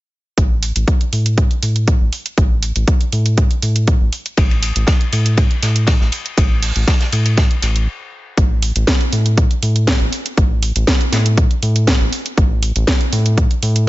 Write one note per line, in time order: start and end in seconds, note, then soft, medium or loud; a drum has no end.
0.38 0.72 A1 medium
0.38 kick loud
0.38 closed hi-hat medium
0.63 open hi-hat loud
0.76 0.86 A1 medium
0.76 closed hi-hat medium
0.88 kick loud
0.88 closed hi-hat medium
1.01 closed hi-hat soft
1.13 1.47 A2 medium
1.13 open hi-hat medium
1.26 closed hi-hat soft
1.38 kick loud
1.38 closed hi-hat medium
1.51 closed hi-hat soft
1.63 1.97 A2 medium
1.63 open hi-hat loud
1.76 closed hi-hat soft
1.88 kick loud
1.88 closed hi-hat medium
2.01 2.11 A1 medium
2.13 open hi-hat medium
2.26 closed hi-hat soft
2.38 2.72 A1 loud
2.38 kick loud
2.38 closed hi-hat medium
2.63 open hi-hat loud
2.76 2.86 A1 medium
2.76 closed hi-hat soft
2.88 kick loud
2.88 closed hi-hat medium
3.01 closed hi-hat soft
3.12 3.47 A2 medium
3.12 open hi-hat medium
3.26 closed hi-hat soft
3.38 kick loud
3.38 closed hi-hat medium
3.51 closed hi-hat soft
3.62 3.97 A2 medium
3.62 open hi-hat loud
3.76 closed hi-hat medium
3.88 kick loud
3.88 closed hi-hat medium
4.01 4.11 A1 medium
4.13 open hi-hat medium
4.26 closed hi-hat soft
4.37 4.72 A1 medium
4.37 kick loud
4.37 closed hi-hat medium
4.37 ride medium
4.51 ride soft
4.63 open hi-hat loud
4.63 ride medium
4.76 4.86 A1 medium
4.76 closed hi-hat medium
4.87 kick loud
4.87 snare loud
4.87 closed hi-hat medium
4.87 ride medium
5.01 closed hi-hat soft
5.13 5.47 A2 medium
5.13 open hi-hat loud
5.13 ride medium
5.26 closed hi-hat soft
5.37 kick loud
5.37 closed hi-hat medium
5.37 ride medium
5.51 closed hi-hat soft
5.63 5.97 A2 medium
5.63 snare soft
5.63 open hi-hat loud
5.63 ride medium
5.76 closed hi-hat soft
5.87 kick loud
5.87 snare loud
5.87 closed hi-hat medium
5.87 ride medium
6.01 6.11 A1 medium
6.01 snare soft
6.12 open hi-hat medium
6.12 ride medium
6.26 closed hi-hat soft
6.38 6.72 A1 loud
6.38 kick loud
6.38 closed hi-hat medium
6.38 ride medium
6.62 open hi-hat medium
6.62 open hi-hat loud
6.76 6.86 A1 medium
6.76 closed hi-hat soft
6.88 kick loud
6.88 snare loud
6.88 closed hi-hat medium
6.88 ride medium
7.01 snare medium
7.01 closed hi-hat soft
7.13 7.47 A2 medium
7.13 open hi-hat loud
7.13 ride medium
7.26 closed hi-hat soft
7.26 ride soft
7.37 kick loud
7.37 snare loud
7.37 closed hi-hat medium
7.37 ride medium
7.51 closed hi-hat soft
7.62 7.88 A1 medium
7.62 snare soft
7.62 open hi-hat loud
7.62 ride medium
7.76 closed hi-hat soft
8.38 8.72 A1 medium
8.38 kick loud
8.38 closed hi-hat medium
8.62 open hi-hat loud
8.76 8.86 A1 medium
8.76 closed hi-hat medium
8.87 kick loud
8.87 snare loud
8.87 closed hi-hat medium
9.01 closed hi-hat soft
9.13 9.47 A2 medium
9.13 open hi-hat medium
9.26 closed hi-hat medium
9.38 kick loud
9.38 closed hi-hat medium
9.51 closed hi-hat soft
9.63 9.97 A2 medium
9.63 open hi-hat loud
9.76 closed hi-hat medium
9.87 kick loud
9.87 snare loud
9.87 closed hi-hat medium
10.01 10.11 A1 medium
10.13 open hi-hat medium
10.26 closed hi-hat medium
10.38 10.72 A1 medium
10.38 kick loud
10.38 closed hi-hat medium
10.63 open hi-hat loud
10.76 10.86 A1 medium
10.76 closed hi-hat medium
10.87 kick loud
10.87 snare loud
10.87 closed hi-hat medium
11.01 closed hi-hat soft
11.12 11.47 A2 medium
11.12 snare soft
11.12 open hi-hat medium
11.26 closed hi-hat medium
11.38 kick loud
11.38 closed hi-hat medium
11.51 closed hi-hat soft
11.63 11.97 A2 medium
11.63 open hi-hat loud
11.76 closed hi-hat medium
11.87 kick loud
11.87 snare loud
11.87 closed hi-hat medium
12.01 12.11 A1 medium
12.13 open hi-hat medium
12.26 closed hi-hat soft
12.38 12.72 A1 loud
12.38 kick loud
12.38 closed hi-hat medium
12.63 open hi-hat loud
12.76 12.86 A1 medium
12.76 closed hi-hat soft
12.87 kick loud
12.87 snare loud
12.87 closed hi-hat medium
13.01 closed hi-hat soft
13.13 13.47 A2 medium
13.13 open hi-hat loud
13.26 closed hi-hat soft
13.38 kick loud
13.38 closed hi-hat medium
13.51 closed hi-hat soft
13.63 13.89 A2 medium
13.63 open hi-hat loud
13.76 closed hi-hat soft